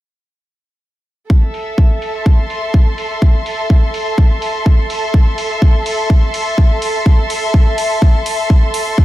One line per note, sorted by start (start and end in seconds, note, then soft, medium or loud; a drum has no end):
1.30 9.05 A4 medium
1.30 kick loud
1.35 9.05 E5 medium
1.54 open hi-hat medium
1.78 kick loud
1.93 9.05 A5 medium
2.02 open hi-hat loud
2.18 9.05 C6 medium
2.26 kick loud
2.50 open hi-hat medium
2.74 kick loud
2.98 open hi-hat medium
3.22 kick loud
3.46 open hi-hat loud
3.70 kick loud
3.94 open hi-hat medium
4.18 kick loud
4.42 open hi-hat loud
4.66 kick loud
4.90 open hi-hat loud
5.14 kick loud
5.38 open hi-hat loud
5.62 kick loud
5.86 open hi-hat loud
6.10 kick loud
6.34 open hi-hat loud
6.58 kick loud
6.82 open hi-hat loud
7.06 kick loud
7.30 open hi-hat loud
7.54 kick loud
7.78 open hi-hat medium
8.02 kick loud
8.26 open hi-hat loud
8.50 kick loud
8.74 open hi-hat loud
8.98 kick loud